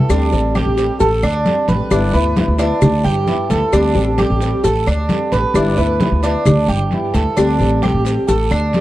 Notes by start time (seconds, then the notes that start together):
0.09 D2 D3 G3 C4 D4 G4, cowbell, high conga, long guiro, claves, maracas
0.31 A1 G3 C4 G4, high conga, maracas
0.55 D3 G3 C4 G4, cowbell, high conga, short guiro, claves, maracas
0.66 A1
0.77 G3 C4 G4, high conga, short guiro, maracas
1.00 A1 A4, muted nylon-string guitar stroke, cowbell, high conga, long guiro, maracas
1.23 D2 D4, high conga, claves, maracas
1.45 D3 G3 C4 G4, cowbell, high conga, short guiro, maracas
1.68 A1 B4, high conga, short guiro, maracas
1.90 G1 G3 B3 D4 E4, cowbell, high conga, long guiro, claves, maracas
2.13 D2 B3 E4 B4, high conga, maracas
2.36 G3 B3 E4, cowbell, high conga, short guiro, maracas
2.48 D2
2.59 B3 D4 E4, cowbell, short guiro, maracas
2.81 D2, muted nylon-string guitar stroke, cowbell, high conga, low conga, long guiro, claves, maracas
3.05 G1 G4, high conga, maracas
3.27 G3 B3 E4, cowbell, high conga, short guiro, maracas
3.50 D2 A4, cowbell, high conga, short guiro, maracas
3.72 D2 D3 G3 C4 D4 G4, cowbell, high conga, long guiro, claves, maracas
3.95 A1 G3 C4 G4, high conga, maracas
4.18 D3 G3 C4 G4, cowbell, high conga, short guiro, claves, maracas
4.30 A1
4.41 G3 C4 G4, high conga, short guiro, maracas
4.64 A1 A4, muted nylon-string guitar stroke, cowbell, high conga, long guiro, maracas
4.87 D2 D4, high conga, claves, maracas
5.09 D3 G3 C4 G4, cowbell, high conga, short guiro, maracas
5.32 A1 B4, short guiro, maracas
5.54 G1 G3 B3 D4 E4, cowbell, high conga, long guiro, claves, maracas
5.77 D2 B3 E4 B4, high conga, maracas
6.00 G3 B3 E4, cowbell, high conga, short guiro, maracas
6.12 D2
6.23 B3 D4 E4, cowbell, short guiro, maracas
6.46 D2, cowbell, high conga, low conga, long guiro, claves, maracas
6.68 G1 G4, high conga, maracas
6.91 G3 B3 E4, cowbell, high conga, short guiro, maracas
7.14 D2 A4, cowbell, short guiro, maracas
7.36 D2 D3 G3 C4 D4 G4, cowbell, high conga, long guiro, claves, maracas
7.60 A1 G3 C4 G4, high conga, maracas
7.82 D3 G3 C4 G4, cowbell, high conga, short guiro, claves, maracas
7.94 A1
8.05 G3 C4 G4, high conga, short guiro, maracas
8.28 A1 A4, muted nylon-string guitar stroke, cowbell, high conga, long guiro, maracas
8.51 D2 D4, high conga, claves, maracas
8.73 D3 G3 C4 G4, cowbell, high conga, short guiro, maracas